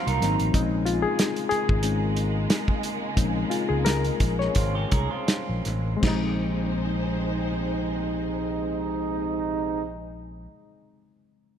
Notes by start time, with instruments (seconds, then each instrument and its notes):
Already playing: reed electric piano F#3 A#3 C4 F4, string section F#3 F5 A#5 C6
0.06 fingered electric bass C2, clean electric guitar A#3 D#4, closed hi-hat
0.21 fingered electric bass G#1, reed electric piano F#3 A#3 C4 D#4, snare, closed hi-hat
0.39 fingered electric bass A1, closed hi-hat
0.54 fingered electric bass A#1, string section C#3 G#3 A#3, reed electric piano G#3 C4 C#4 D#4, kick, closed hi-hat
0.86 reed electric piano F4, closed hi-hat
1.02 reed electric piano G#4
1.19 snare, closed hi-hat
1.36 closed hi-hat
1.49 reed electric piano G#4, muted fingered electric bass stroke, closed hi-hat
1.69 fingered electric bass G#1, kick
1.83 reed electric piano G#3 C4 C#4 D#4, closed hi-hat
2.17 closed hi-hat
2.50 snare, closed hi-hat
2.68 kick
2.83 closed hi-hat
3.16 fingered electric bass A#1, reed electric piano G#3 C4 C#4 D#4, kick, closed hi-hat
3.50 reed electric piano F4, closed hi-hat
3.69 fingered electric bass C#2, reed electric piano G#4
3.85 reed electric piano A#4, snare, closed hi-hat
4.04 closed hi-hat
4.20 fingered electric bass A#1, kick, closed hi-hat
4.39 reed electric piano C#5, snare
4.55 fingered electric bass G#1, clean electric guitar C4 F4, kick, closed hi-hat
4.75 clean electric guitar C#4 G4
4.92 fingered electric bass C2, clean electric guitar D#4 G#4, kick, closed hi-hat
5.11 clean electric guitar C4 F4
5.28 snare, closed hi-hat
5.49 fingered electric bass A#1
5.65 fingered electric bass A1, snare, closed hi-hat
5.97 reed electric piano G#3 C4
6.02 fingered electric bass A#1, string section A#2 G#3 C4 D#4 C5, trombone section C3 G#3 D#4, reed electric piano C#3, kick, snare, crash
6.08 reed electric piano D#4